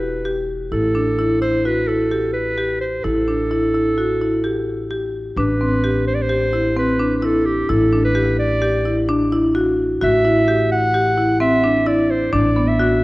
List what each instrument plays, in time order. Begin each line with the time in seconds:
Already playing: upright bass E1, clarinet B4
0.25 marimba G4
0.71 upright bass A1, marimba E4, clarinet A4
0.95 marimba D4
1.18 marimba E4
1.41 marimba E4, clarinet C5
1.65 marimba F#4, clarinet B4
1.88 marimba E4, clarinet A4
2.11 marimba G4
2.33 clarinet B4
2.58 marimba G4
2.81 clarinet C5
3.04 upright bass A1, marimba E4, clarinet A4
3.28 marimba D4
3.51 marimba E4
3.75 marimba E4
3.98 marimba F#4
4.21 marimba E4
4.44 marimba G4
4.91 marimba G4
5.36 upright bass A1, marimba D4, clarinet B4
5.61 marimba C4
5.84 marimba G4
6.07 clarinet C5
6.14 clarinet D5
6.22 clarinet C5
6.29 marimba G4
6.53 marimba E4
6.77 marimba C4, clarinet B4
6.99 marimba D4
7.17 clarinet B4
7.22 marimba E4, clarinet A4
7.46 clarinet G4
7.69 upright bass A1, marimba E4, clarinet A4
7.92 marimba D4
8.05 clarinet B4
8.15 marimba G4
8.39 clarinet D5
8.62 marimba G4
8.85 marimba E4
9.09 marimba D4
9.32 marimba E4
9.55 marimba F#4
10.01 upright bass A1, marimba F#4, clarinet E5
10.25 marimba E4
10.48 marimba G4
10.72 clarinet F#5
10.94 marimba G4
11.17 marimba E4
11.40 marimba C4, clarinet E5
11.64 marimba D4
11.86 marimba E4, clarinet D5
12.11 clarinet C5
12.32 upright bass A1, marimba D4, clarinet D5
12.56 marimba B3
12.68 clarinet E5
12.79 marimba F#4